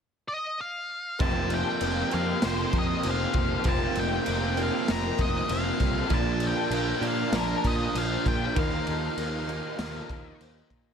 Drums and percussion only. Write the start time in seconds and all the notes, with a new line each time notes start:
1.20 kick, crash
1.50 crash
1.81 crash
2.11 crash
2.42 snare, crash
2.73 kick, crash
3.03 crash
3.33 kick, crash
3.64 kick, crash
3.95 crash
4.26 crash
4.57 crash
4.88 snare, crash
5.19 kick, crash
5.49 crash
5.80 kick, crash
6.10 kick, crash
6.40 crash
6.71 crash
7.02 crash
7.33 snare, crash
7.64 kick, crash
7.95 crash
8.26 kick, crash
8.56 kick, crash
8.87 crash
9.18 crash
9.49 crash
9.79 snare, crash
10.10 kick, crash
10.41 crash
10.70 kick, crash